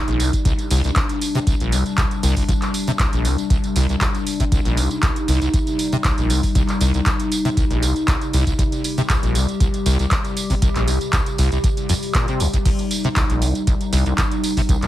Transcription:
Already playing: ambient pad C3 G3 D#4
0.08 acid bass A#1, closed hi-hat, tambourine
0.20 acid bass C2, open hi-hat, tambourine
0.33 kick, closed hi-hat, tambourine
0.45 acid bass C2, ambient pad D4, kick, closed hi-hat, tambourine
0.59 closed hi-hat, tambourine
0.71 acid bass C2, open hi-hat, tambourine
0.84 acid bass C2, closed hi-hat, tambourine
0.96 acid bass C2, kick, clap, closed hi-hat, tambourine
1.09 closed hi-hat, tambourine
1.21 open hi-hat, tambourine
1.35 acid bass C3, closed hi-hat, tambourine
1.47 acid bass C2, kick, closed hi-hat, tambourine
1.60 acid bass A#1, closed hi-hat, tambourine
1.72 acid bass C2, open hi-hat, tambourine
1.86 closed hi-hat, tambourine
1.98 acid bass C2, kick, clap, closed hi-hat, tambourine
2.11 closed hi-hat, tambourine
2.23 acid bass C2, open hi-hat, tambourine
2.37 kick, open hi-hat, tambourine
2.49 acid bass C2, kick, closed hi-hat, tambourine
2.62 clap, closed hi-hat, tambourine
2.74 open hi-hat, tambourine
2.87 acid bass C3, closed hi-hat, tambourine
2.99 acid bass C2, kick, clap, closed hi-hat, tambourine
3.13 acid bass A#1, closed hi-hat, tambourine
3.25 acid bass C2, open hi-hat, tambourine
3.38 closed hi-hat, tambourine
3.50 acid bass C2, kick, closed hi-hat, tambourine
3.64 closed hi-hat, tambourine
3.76 acid bass C2, open hi-hat, tambourine
3.89 acid bass C2, closed hi-hat, tambourine
4.01 acid bass C2, kick, clap, closed hi-hat, tambourine
4.15 closed hi-hat, tambourine
4.27 open hi-hat, tambourine
4.40 acid bass C3, kick, closed hi-hat, tambourine
4.52 acid bass C2, ambient pad D#4, kick, closed hi-hat, tambourine
4.65 acid bass A#1, closed hi-hat, tambourine
4.77 acid bass C2, open hi-hat, tambourine
4.91 closed hi-hat, tambourine
5.03 acid bass C2, kick, clap, closed hi-hat, tambourine
5.16 closed hi-hat, tambourine
5.28 acid bass C2, open hi-hat, tambourine
5.42 acid bass C2, closed hi-hat, tambourine
5.54 acid bass C2, kick, closed hi-hat, tambourine
5.67 closed hi-hat, tambourine
5.79 open hi-hat, tambourine
5.92 acid bass C3, closed hi-hat, tambourine
6.04 acid bass C2, kick, clap, closed hi-hat, tambourine
6.18 acid bass A#1, closed hi-hat, tambourine
6.30 acid bass C2, open hi-hat, tambourine
6.43 kick, open hi-hat, tambourine
6.55 acid bass C2, kick, closed hi-hat, tambourine
6.69 clap, closed hi-hat, tambourine
6.81 acid bass C2, open hi-hat, tambourine
6.94 acid bass C2, closed hi-hat, tambourine
7.06 acid bass C2, kick, clap, closed hi-hat, tambourine
7.20 closed hi-hat, tambourine
7.32 open hi-hat, tambourine
7.45 acid bass C3, closed hi-hat, tambourine
7.57 acid bass C2, kick, closed hi-hat, tambourine
7.70 acid bass A#1, closed hi-hat, tambourine
7.82 acid bass C2, open hi-hat, tambourine
7.96 closed hi-hat, tambourine
8.08 acid bass C2, kick, clap, closed hi-hat, tambourine
8.21 closed hi-hat, tambourine
8.33 acid bass C2, open hi-hat, tambourine
8.47 kick, closed hi-hat, tambourine
8.59 acid bass C2, ambient pad G4, kick, closed hi-hat, tambourine
8.72 closed hi-hat, tambourine
8.84 open hi-hat, tambourine
8.98 acid bass C3, closed hi-hat, tambourine
9.10 acid bass C2, kick, clap, closed hi-hat, tambourine
9.23 acid bass A#1, closed hi-hat, tambourine
9.35 acid bass C2, open hi-hat, tambourine
9.49 closed hi-hat, tambourine
9.60 acid bass C2, kick, closed hi-hat, tambourine
9.74 closed hi-hat, tambourine
9.86 acid bass C2, open hi-hat, tambourine
9.99 acid bass C2, closed hi-hat, tambourine
10.11 acid bass C2, kick, clap, closed hi-hat, tambourine
10.25 closed hi-hat, tambourine
10.37 open hi-hat, tambourine
10.50 acid bass C3, kick, open hi-hat, tambourine
10.62 acid bass C2, kick, closed hi-hat, tambourine
10.76 acid bass A#1, clap, closed hi-hat, tambourine
10.88 acid bass C2, open hi-hat, tambourine
11.01 closed hi-hat, tambourine
11.13 acid bass C2, kick, clap, closed hi-hat, tambourine
11.26 closed hi-hat, tambourine
11.38 acid bass C2, open hi-hat, tambourine
11.52 acid bass C2, closed hi-hat, tambourine
11.64 acid bass C2, kick, closed hi-hat, tambourine
11.77 closed hi-hat, tambourine
11.89 acid bass F2, open hi-hat, tambourine
12.03 open hi-hat, tambourine
12.15 acid bass A#2, kick, clap, closed hi-hat, tambourine
12.28 acid bass C3, closed hi-hat, tambourine
12.40 acid bass C2, open hi-hat, tambourine
12.53 acid bass C2, kick, closed hi-hat, tambourine
12.65 acid bass C2, ambient pad D#4, kick, closed hi-hat, crash, tambourine
12.79 closed hi-hat, tambourine
12.91 open hi-hat, tambourine
13.04 acid bass C3, closed hi-hat, tambourine
13.16 acid bass C2, kick, clap, closed hi-hat, tambourine
13.30 acid bass A#1, closed hi-hat, tambourine
13.42 acid bass C2, open hi-hat, tambourine
13.55 closed hi-hat, tambourine
13.67 acid bass C2, kick, closed hi-hat, tambourine
13.81 closed hi-hat, tambourine
13.93 acid bass C2, open hi-hat, tambourine
14.06 acid bass C2, closed hi-hat, tambourine
14.18 acid bass C2, kick, clap, closed hi-hat, tambourine
14.31 closed hi-hat, tambourine
14.44 open hi-hat, tambourine
14.57 acid bass C3, kick, open hi-hat, tambourine
14.69 acid bass C2, kick, closed hi-hat, tambourine
14.82 acid bass A#1, clap, closed hi-hat, tambourine

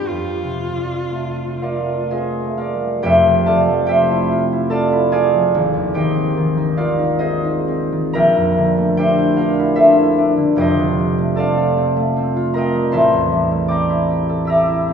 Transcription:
Already playing: harp G2 G3 B3 F4
0.08 harp F2, viola F4
0.44 harp C3
0.76 harp G3
1.10 harp A3
1.47 harp C4
1.62 harp F4 A#4 D5 F5
1.80 harp A3
2.11 harp C4 G#4 C5 D#5 G#5
2.44 harp A3
2.57 harp F4 A#4 D5 F5
2.75 harp G3
3.02 harp F1 F2 G4 C5 E5 G5
3.27 harp C3
3.46 harp F3 A4 D5 F5 A5
3.68 harp A3
3.86 harp C4 G4 E5 G5
3.91 harp C5
4.11 harp E4
4.32 harp F4
4.52 harp E4
4.70 harp F4 A4 D5 F5 A5
4.92 harp E4
5.12 harp C4 G#4 D5 F5 G#5
5.34 harp F3
5.55 harp G#1
5.74 harp D#2
5.94 harp D#3 G4 C5 D#5 G5
6.16 harp C4
6.37 harp D#3
6.57 harp D#4
6.77 harp C4 F4 D5 F5
6.81 harp A#4
6.98 harp D#4
7.19 harp C4 G#4 C5 D#5
7.44 harp D#4
7.68 harp C4
7.92 harp D#3
8.13 harp A#1 A#4 E5 G5 A#5
8.37 harp F2
8.58 harp D3
8.78 harp A3
8.97 harp D4 G4 C5 E5 G5
9.19 harp E4
9.36 harp D4 F4 A#4 F5
9.41 harp D5
9.59 harp E4
9.76 harp D4 A4 C5 E5
9.98 harp E4
10.18 harp D4
10.37 harp D3
10.56 harp F1 F2 G4 C5 G5
10.61 harp D#5
10.79 harp C3
10.99 harp G3
11.18 harp A3
11.36 harp C4 A4 D5 A5
11.40 harp F5
11.57 harp F4
11.77 harp C4
11.97 harp A3
12.17 harp C4
12.36 harp F4
12.53 harp C4 A#4 D#5 A#5
12.58 harp G5
12.75 harp G3
12.92 harp A1 C5 E5 A5 C6
13.13 harp E2
13.32 harp G3
13.52 harp A3
13.68 harp C4 D5 G5 A#5 D6
13.90 harp E4
14.10 harp G4
14.29 harp A4
14.45 harp G4 E5 E6
14.50 harp A#5 D6
14.68 harp E4
14.89 harp C4

